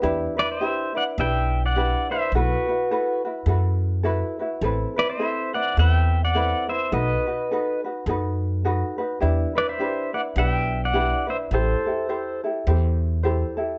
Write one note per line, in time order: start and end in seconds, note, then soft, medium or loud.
0.02 0.25 E2 medium
0.02 0.37 D4 medium
0.02 0.37 E4 medium
0.02 0.36 G4 medium
0.02 0.35 B4 medium
0.37 0.59 D4 soft
0.37 0.60 E4 soft
0.37 0.60 B4 medium
0.37 0.49 B4 medium
0.37 0.50 D5 medium
0.52 0.93 C5 medium
0.52 0.92 E5 medium
0.61 0.94 D4 medium
0.61 0.94 E4 medium
0.61 0.94 G4 medium
0.61 0.93 B4 medium
0.95 1.18 D4 soft
0.95 1.18 E4 soft
0.95 1.18 B4 soft
0.95 1.03 D5 medium
0.95 1.03 F#5 medium
1.18 1.92 B1 medium
1.18 1.75 D4 medium
1.18 1.76 E4 medium
1.18 1.75 G4 medium
1.18 1.77 B4 medium
1.18 1.61 E5 medium
1.18 1.66 G5 loud
1.66 2.07 D5 medium
1.66 2.12 F#5 medium
1.76 2.09 D4 medium
1.76 2.10 E4 medium
1.76 2.09 G4 medium
1.76 2.10 B4 medium
2.11 2.34 D4 soft
2.11 2.34 E4 soft
2.11 2.34 B4 soft
2.11 2.32 C5 medium
2.11 2.35 E5 medium
2.32 2.54 B1 medium
2.32 2.68 E4 medium
2.32 2.68 F#4 medium
2.32 3.21 F#4 medium
2.32 2.68 A4 medium
2.36 2.67 B4 medium
2.36 3.22 B4 medium
2.68 2.90 E4 soft
2.68 2.90 F#4 soft
2.68 2.91 B4 medium
2.91 3.24 E4 medium
2.91 3.24 F#4 medium
2.91 3.24 A4 medium
2.91 3.23 B4 medium
3.25 3.47 E4 soft
3.25 3.48 F#4 soft
3.25 3.47 B4 medium
3.46 4.21 F#2 medium
3.46 4.04 E4 medium
3.46 4.03 F#4 medium
3.46 4.03 A4 medium
3.46 4.05 B4 medium
4.03 4.38 E4 medium
4.03 4.39 F#4 medium
4.03 4.38 A4 medium
4.03 4.38 B4 medium
4.39 4.63 E4 soft
4.39 4.63 F#4 medium
4.39 4.63 B4 medium
4.61 4.84 A1 medium
4.61 4.97 C4 medium
4.61 4.96 E4 medium
4.61 4.96 A4 medium
4.61 4.95 B4 medium
4.96 5.18 C4 soft
4.96 5.19 E4 soft
4.96 5.19 B4 medium
4.96 5.09 B4 medium
4.96 5.09 D5 medium
5.10 5.52 C5 medium
5.10 5.55 E5 medium
5.19 5.53 C4 medium
5.19 5.54 E4 medium
5.19 5.53 A4 medium
5.19 5.53 B4 medium
5.54 5.78 C4 soft
5.54 5.78 E4 soft
5.54 5.77 B4 soft
5.54 5.76 D5 medium
5.54 5.78 F#5 medium
5.77 6.52 E2 medium
5.77 6.34 C4 medium
5.77 6.34 E4 medium
5.77 6.34 A4 medium
5.77 6.35 B4 medium
5.77 6.21 E5 medium
5.77 5.90 F#5 loud
5.90 6.24 G5 loud
6.25 6.66 D5 medium
6.25 6.71 F#5 medium
6.35 6.69 C4 medium
6.35 6.69 E4 medium
6.35 6.68 A4 medium
6.35 6.67 B4 medium
6.69 6.92 C4 soft
6.69 6.92 E4 soft
6.69 6.91 B4 soft
6.69 6.91 C5 medium
6.69 6.93 E5 medium
6.92 7.14 B1 medium
6.92 7.26 D#4 medium
6.92 7.26 F#4 medium
6.92 7.26 A4 medium
6.92 7.25 B4 medium
6.92 7.80 B4 medium
6.92 7.80 D#5 medium
7.27 7.50 D#4 soft
7.27 7.50 F#4 soft
7.27 7.50 B4 medium
7.51 7.84 D#4 medium
7.51 7.84 F#4 medium
7.51 7.84 A4 medium
7.51 7.83 B4 medium
7.84 8.08 D#4 soft
7.84 8.08 F#4 soft
7.84 8.07 B4 soft
8.06 8.81 F#2 loud
8.06 8.64 D#4 medium
8.06 8.64 F#4 medium
8.06 8.63 A4 medium
8.06 8.66 B4 medium
8.65 8.99 D#4 medium
8.65 8.98 F#4 medium
8.65 8.98 A4 medium
8.65 8.97 B4 medium
8.98 9.21 D#4 soft
8.98 9.21 F#4 soft
8.98 9.21 B4 medium
9.20 9.44 E2 medium
9.20 9.55 D4 medium
9.20 9.55 E4 medium
9.20 9.55 G4 medium
9.20 9.54 B4 medium
9.55 9.79 D4 soft
9.55 9.79 E4 soft
9.55 9.79 B4 medium
9.55 9.68 B4 medium
9.55 9.69 D5 medium
9.69 10.11 C5 medium
9.69 10.15 E5 medium
9.79 10.13 D4 medium
9.79 10.14 E4 medium
9.79 10.13 G4 medium
9.79 10.13 B4 medium
10.14 10.36 D4 soft
10.14 10.37 E4 soft
10.14 10.37 B4 soft
10.14 10.21 D5 medium
10.14 10.20 F#5 medium
10.36 11.11 B1 loud
10.36 10.93 D4 medium
10.36 10.94 E4 medium
10.36 10.93 G4 medium
10.36 10.94 B4 medium
10.36 10.81 E5 medium
10.36 10.49 F#5 medium
10.49 10.84 G5 medium
10.85 11.26 D5 medium
10.85 11.31 F#5 medium
10.93 11.28 D4 medium
10.93 11.27 E4 medium
10.93 11.28 G4 medium
10.93 11.26 B4 medium
11.27 11.52 D4 soft
11.27 11.52 E4 soft
11.27 11.51 B4 soft
11.27 11.36 C5 medium
11.27 11.36 E5 medium
11.51 11.73 A1 medium
11.51 11.86 E4 medium
11.51 11.86 G4 medium
11.51 11.85 A4 medium
11.51 12.40 A4 medium
11.51 11.86 C5 medium
11.51 12.41 C5 medium
11.86 12.09 E4 soft
11.86 12.08 G4 soft
11.86 12.09 A4 medium
12.09 12.43 E4 medium
12.09 12.43 G4 medium
12.09 12.42 A4 medium
12.09 12.43 C5 medium
12.44 12.67 E4 soft
12.44 12.66 G4 soft
12.44 12.67 A4 soft
12.67 13.41 E2 loud
12.67 13.24 E4 medium
12.67 13.23 G4 medium
12.67 13.24 A4 medium
12.67 13.22 C5 medium
13.23 13.56 E4 medium
13.23 13.57 G4 medium
13.23 13.56 A4 medium
13.23 13.56 C5 medium
13.57 13.78 E4 medium
13.57 13.78 G4 soft
13.57 13.78 A4 medium